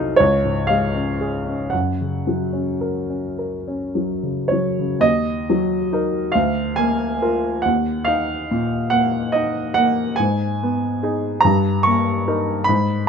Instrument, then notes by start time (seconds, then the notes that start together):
grand piano
Already playing: C2 C3 F#3 D#4 A4 D#5 F5
0.16 C#2 C#5
0.45 G#2
0.67 G#3 F5
0.94 C#4
1.21 G#4
1.45 C#4
1.70 F#2 F#5
2.01 C#3
2.27 F#3
2.53 C#4
2.81 A#4
3.10 C#4
3.39 A#4
3.68 C#4
3.95 F#3
4.23 C#3
4.48 F#3 C#5
4.79 C#3
5.00 D#2 D#5
5.50 F#3
5.93 D#4 A#4
6.32 D2 F5
6.76 A#3 G#5
7.22 F4 A#4
7.62 D#2 F#5
8.05 D#4 F5
8.51 A#2
8.90 A#3 F#5
9.32 D#4 D#5
9.74 A#3 F#5
10.16 G#2 G#5
10.63 B3
11.03 D#4 G#4
11.41 A#5
11.45 G2
11.83 A#3 C#6
12.28 D#4 A#4
12.64 B5
12.69 G#2